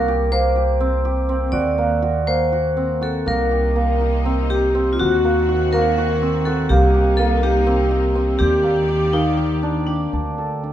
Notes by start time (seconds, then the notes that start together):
Already playing: C2 A#3 C4 F#4 A#4
0.08 G4
0.32 A#3 C5
0.56 G4
0.80 C4
1.05 G4
1.29 C4
1.52 D#2 F#4 D5
1.78 A#3
2.02 F#4
2.27 A#3 C5
2.52 F#4
2.77 C4
3.01 F#4 A4
3.26 C2 C3 A#3 D#4 A#4
3.51 G4
3.76 A#3
4.01 G4
4.25 C4
4.50 G4
4.75 C4
4.93 F4
4.99 D#2 D#3 C4 F#4
5.24 A#3
5.49 F#4
5.73 A#3 A#4
5.98 F#4
6.22 C4
6.45 F#4 A4
6.69 C2 C3 A#3 D#4 G4
6.94 G4
7.17 A#3 A4
7.43 G4
7.67 C4
7.91 G4
8.15 C4
8.39 D#2 D#3 G4 D5
8.63 A#3
8.88 G4
9.13 A#3 D#4
9.37 G4
9.63 D4
9.87 D4 G4
10.13 D2 D4
10.38 A4
10.64 D4